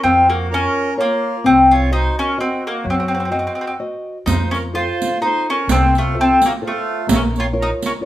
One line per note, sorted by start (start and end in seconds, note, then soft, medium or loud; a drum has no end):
0.03 0.65 F2 medium
0.03 0.49 F3 medium
0.03 0.27 C4 medium
0.03 0.27 F4 medium
0.27 0.51 A#3 medium
0.27 0.48 F#4 medium
0.51 0.95 C#4 loud
0.51 0.88 F4 medium
0.51 0.94 A#4 loud
0.51 0.88 A#4 medium
0.51 0.89 C#5 medium
0.97 1.46 A#3 medium
0.97 1.34 F4 medium
0.97 1.41 F4 medium
0.97 1.34 A#4 soft
0.97 1.35 C#5 medium
1.44 2.06 C2 medium
1.44 1.89 C4 medium
1.44 1.71 C4 loud
1.44 1.69 F#4 medium
1.71 1.92 F4 medium
1.71 1.90 C#5 medium
1.91 2.15 D#4 medium
1.91 2.28 F#4 medium
1.91 2.28 C5 soft
1.91 2.16 C5 medium
1.91 2.28 D#5 medium
2.19 2.37 C#4 loud
2.19 2.37 A#4 medium
2.38 2.63 C4 medium
2.38 2.75 F#4 soft
2.38 2.62 F#4 medium
2.38 2.75 C5 soft
2.38 2.75 D#5 medium
2.65 2.85 A#3 medium
2.65 2.84 F#4 medium
2.84 3.46 F#2 medium
2.84 3.30 F#3 medium
2.84 3.76 F#4 medium
2.90 2.95 C4 medium
3.00 3.04 C4 soft
3.08 3.12 C4 medium
3.15 3.18 C4 medium
3.20 3.24 C4 medium
3.25 3.30 C4 soft
3.30 3.37 C4 medium
3.30 3.69 F#4 medium
3.30 3.69 C5 soft
3.30 3.69 D#5 medium
3.39 3.45 C4 medium
3.47 3.53 C4 medium
3.55 3.60 C4 soft
3.61 3.66 C4 medium
3.67 3.73 C4 medium
3.79 4.17 F#4 medium
3.79 4.17 C5 soft
3.79 4.17 D#5 medium
4.26 4.88 F2 medium
4.26 4.72 F3 medium
4.26 4.50 D#4 medium
4.26 4.51 C5 medium
4.26 riq medium
4.51 4.57 C#4 medium
4.51 4.63 A#4 medium
4.51 riq soft
4.73 5.11 F4 medium
4.73 5.21 F4 loud
4.73 5.11 A4 soft
4.73 5.12 C5 medium
4.73 5.18 C5 medium
5.02 riq soft
5.21 5.48 D#4 medium
5.21 5.59 F4 medium
5.21 5.59 A4 soft
5.21 5.59 C5 medium
5.21 5.47 C5 medium
5.50 5.68 C#4 loud
5.50 5.68 A#4 medium
5.67 6.28 C2 medium
5.67 6.14 C3 medium
5.67 5.94 A4 medium
5.67 riq medium
5.71 5.94 C4 medium
5.95 6.18 A3 medium
5.95 6.15 F4 medium
5.95 riq soft
6.15 6.52 F4 medium
6.15 6.52 A4 medium
6.15 6.41 A4 medium
6.15 6.52 C5 medium
6.21 6.42 C4 loud
6.42 6.53 F#4 medium
6.42 riq medium
6.46 6.51 A#3 medium
6.62 6.99 F4 medium
6.62 7.07 F4 medium
6.62 6.99 A4 medium
6.62 7.00 C5 medium
6.67 7.08 A3 medium
7.07 7.70 A#1 loud
7.07 7.53 A#3 medium
7.07 riq medium
7.14 7.21 C#4 medium
7.14 7.25 A#4 medium
7.36 7.47 C#5 medium
7.36 riq soft
7.40 7.45 F4 medium
7.53 7.92 F4 medium
7.53 7.92 A#4 medium
7.53 7.92 C#5 medium
7.60 7.68 D#4 medium
7.60 7.71 A#4 medium
7.82 7.91 C#4 medium
7.82 7.94 A#4 medium
7.82 riq soft
8.01 8.05 F4 medium
8.01 8.05 A#4 soft
8.01 8.05 C#5 medium